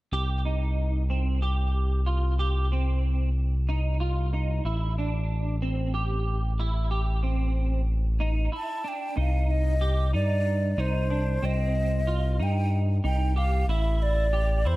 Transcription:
0.12 C2 G4
0.45 D#4
1.10 C4
1.42 G4
2.06 F4
2.39 G4
2.72 C4
3.69 D#4
4.00 F4
4.33 D#4
4.65 A1 E4
4.98 D4
5.62 C4
5.94 G4
6.60 E4
6.91 G4
7.23 C4
8.20 D#4
8.52 E4
8.56 A5
8.84 D4 G5
9.17 C2 D#4 F5
9.51 D#5
9.81 G4
10.13 G2 D#4 D5
10.77 C2 D#4 C5
11.10 D4
11.42 C2 C4 D#5
12.07 F4
12.40 G2 D#4 G5
13.04 C2 D#4 G5
13.36 G4 F5
13.68 A1 E4 E5
14.02 D5
14.33 G4
14.65 E2 E4 C5

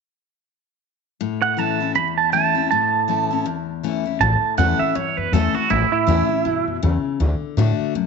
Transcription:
1.21 A2
1.42 F#5
1.57 E3 A3 C#4 E4 A5
1.80 C#4 E4
1.95 E2 B5
2.18 A5
2.32 E3 A3 C#4 E4 A5
2.55 C#4 E4
2.71 A2 A5
3.08 E3 A3 C#4 E4
3.31 C#4 E4
3.46 E2
3.83 E3 A3 C#4 E4
4.05 C#4 E4
4.20 A1 A2 A5
4.42 muted upright bass stroke
4.58 E2 E3 A3 C#4 E4 F#5
4.79 C#4 E4 E5, muted upright bass stroke
4.95 E2 G2 C#5
5.17 F#2 B4
5.32 E2 E3 A3 C#4 E4 A4
5.54 C#4 E4 F#4, muted upright bass stroke
5.70 A1 A2 E4
5.92 E4, muted upright bass stroke
6.07 E2 E3 A3 C#4 E4
6.29 C#4 E4, muted upright bass stroke
6.45 G2 B2
6.67 F#2
6.83 E2 C#3
7.05 muted upright bass stroke
7.20 D2 D3
7.42 muted upright bass stroke
7.57 A2 D3 A3 D4 F#4
7.79 muted upright bass stroke
7.95 F#2 B2

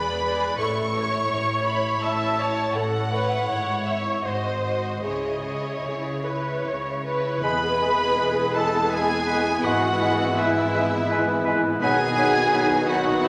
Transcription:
Already playing: E1 E2 G#4 B4 D5 B5
0.24 G#4 D5
0.59 A1 A2 E4 A4 C#5 C#6
0.95 E4 C#5
1.30 A1 A2
1.65 E4 C#5 B5
2.02 A1 A2 E5 A5
2.38 E4 C#5
2.74 A1 A2 A4 F#5
3.10 E4 B4 C#5
3.47 G#1 G#2 E4 C#5
3.86 E4 C#5 E5
4.24 G#1 G#2 F#4 C5 D#5
4.64 F#4 C5
5.03 C#2 C#3 E4 G#4 C#5 D#5
5.44 E4 C#5
5.84 C#2 C#3 G#4 C#5
6.23 E4 B4 C#5
6.65 C#2 C#3 C#5
7.04 E4 B4 C#5
7.42 E1 E2 E3 G#3 B3 E4 G#4 B4 B5
7.80 G#3 E4 B4
8.17 G#3 E4 B4
8.54 G#3 E4 A4 B4 A5
8.90 G#3 E4 G#4 B4 G#5
9.27 G#3 E4 B4
9.63 G#1 G#2 G#3 E4 F#4 B4 F#5
9.99 G#3 E4 B4
10.36 G#3 E4 B4 E5
10.73 G#3 E4 B4
11.10 G#3 E4 B4
11.45 G#3 E4 B4
11.81 B1 B2 D#3 F#3 B3 D#4 F#4 G#4 B4 G#5
12.17 F#3 D#4 B4
12.52 F#3 D#4 B4
12.85 D#4 F#4 B4 F#5
12.90 F#3
13.20 D#4 E4 E5
13.24 B4

